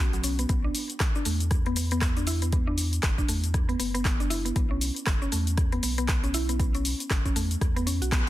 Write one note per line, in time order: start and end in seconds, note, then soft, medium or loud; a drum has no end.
0.00 0.46 B1 medium
0.00 0.12 F#4 medium
0.13 0.23 F#3 medium
0.13 closed hi-hat soft
0.13 cabasa soft
0.24 0.37 C#4 medium
0.24 open hi-hat medium
0.24 cabasa medium
0.39 0.48 B3 medium
0.39 closed hi-hat soft
0.39 cabasa soft
0.49 0.70 B1 loud
0.49 0.63 B3 medium
0.49 kick loud
0.49 closed hi-hat medium
0.49 cabasa medium
0.64 0.74 D4 medium
0.75 open hi-hat medium
0.75 cabasa medium
0.90 closed hi-hat soft
0.90 cabasa soft
1.00 kick loud
1.00 cross-stick loud
1.00 clap loud
1.00 closed hi-hat medium
1.00 cabasa medium
1.15 1.21 D4 medium
1.15 cabasa soft
1.25 3.00 E2 medium
1.25 1.39 A3 medium
1.25 open hi-hat medium
1.25 cabasa loud
1.40 closed hi-hat soft
1.40 cabasa soft
1.51 kick loud
1.51 cross-stick medium
1.51 closed hi-hat medium
1.51 cabasa medium
1.66 1.75 B3 loud
1.66 closed hi-hat soft
1.76 1.90 B3 medium
1.76 open hi-hat medium
1.76 cabasa loud
1.91 1.97 B3 loud
1.91 closed hi-hat soft
1.91 cabasa soft
2.01 2.16 B3 medium
2.01 kick loud
2.01 cross-stick loud
2.01 clap loud
2.01 closed hi-hat medium
2.01 cabasa medium
2.17 2.22 D4 medium
2.17 closed hi-hat soft
2.17 cabasa soft
2.27 2.41 E4 loud
2.27 open hi-hat medium
2.27 cabasa medium
2.42 2.48 B3 medium
2.42 closed hi-hat soft
2.42 cabasa soft
2.52 2.66 B3 medium
2.52 kick loud
2.52 closed hi-hat medium
2.52 cabasa medium
2.67 2.77 D4 medium
2.78 open hi-hat medium
2.78 cabasa medium
2.93 closed hi-hat soft
2.93 cabasa soft
3.03 3.24 F#1 medium
3.03 kick loud
3.03 cross-stick loud
3.03 clap loud
3.03 closed hi-hat medium
3.03 cabasa medium
3.18 3.24 D4 medium
3.18 kick medium
3.18 cabasa soft
3.28 3.76 E2 medium
3.28 3.42 A3 medium
3.28 open hi-hat medium
3.28 cabasa medium
3.44 closed hi-hat soft
3.44 cabasa soft
3.54 kick loud
3.54 cross-stick medium
3.54 closed hi-hat medium
3.54 cabasa medium
3.69 3.78 B3 loud
3.69 closed hi-hat soft
3.79 4.52 F#1 medium
3.79 3.93 B3 medium
3.79 open hi-hat medium
3.79 cabasa medium
3.94 4.00 B3 loud
3.94 closed hi-hat soft
3.94 cabasa soft
4.05 4.19 B3 medium
4.05 kick loud
4.05 cross-stick loud
4.05 clap loud
4.05 closed hi-hat medium
4.05 cabasa medium
4.20 4.26 D4 medium
4.20 closed hi-hat soft
4.20 cabasa soft
4.30 4.44 E4 loud
4.30 open hi-hat medium
4.30 cabasa medium
4.45 4.51 B3 medium
4.45 closed hi-hat soft
4.45 cabasa soft
4.56 4.91 B1 medium
4.56 4.70 B3 medium
4.56 kick loud
4.56 closed hi-hat medium
4.56 cabasa medium
4.71 4.81 C#4 medium
4.81 open hi-hat medium
4.81 cabasa medium
4.96 closed hi-hat soft
4.96 cabasa soft
5.07 5.28 F#1 medium
5.07 kick loud
5.07 cross-stick loud
5.07 clap loud
5.07 closed hi-hat medium
5.07 cabasa medium
5.22 5.28 C#4 medium
5.22 cabasa soft
5.32 5.79 E2 loud
5.32 5.46 A3 medium
5.32 open hi-hat medium
5.32 cabasa medium
5.47 closed hi-hat soft
5.47 cabasa soft
5.58 kick loud
5.58 cross-stick medium
5.58 closed hi-hat medium
5.58 cabasa medium
5.72 5.82 B3 loud
5.72 closed hi-hat soft
5.83 6.94 B1 medium
5.83 5.97 B3 medium
5.83 open hi-hat medium
5.83 cabasa medium
5.98 6.04 B3 loud
5.98 closed hi-hat soft
5.98 cabasa soft
6.08 6.23 B3 medium
6.08 kick loud
6.08 cross-stick loud
6.08 clap loud
6.08 closed hi-hat medium
6.08 cabasa medium
6.24 6.29 C#4 medium
6.24 closed hi-hat soft
6.24 cabasa soft
6.34 6.48 E4 loud
6.34 open hi-hat medium
6.34 cabasa medium
6.49 6.55 B3 medium
6.49 closed hi-hat soft
6.49 cabasa soft
6.60 6.73 B3 medium
6.60 kick loud
6.60 closed hi-hat medium
6.60 cabasa medium
6.75 6.84 C#4 medium
6.75 closed hi-hat soft
6.75 cabasa soft
6.85 open hi-hat loud
6.85 cabasa medium
7.00 closed hi-hat soft
7.00 cabasa soft
7.10 7.31 F#1 medium
7.10 kick loud
7.10 cross-stick loud
7.10 clap loud
7.10 closed hi-hat medium
7.10 cabasa medium
7.25 7.31 C#4 medium
7.25 kick medium
7.25 closed hi-hat soft
7.25 cabasa soft
7.36 7.56 E2 medium
7.36 7.49 A3 medium
7.36 open hi-hat medium
7.36 cabasa medium
7.51 closed hi-hat soft
7.51 cabasa soft
7.61 8.01 E2 loud
7.61 kick loud
7.61 cross-stick medium
7.61 closed hi-hat medium
7.61 cabasa medium
7.76 7.86 B3 loud
7.76 closed hi-hat soft
7.76 cabasa soft
7.87 8.01 C#4 medium
7.87 open hi-hat loud
7.87 cabasa medium
8.01 8.29 B1 medium
8.01 8.11 F#4 medium
8.01 closed hi-hat soft
8.01 cabasa soft
8.12 8.20 B3 medium
8.12 kick loud
8.12 cross-stick loud
8.12 clap loud
8.12 closed hi-hat medium
8.12 cabasa medium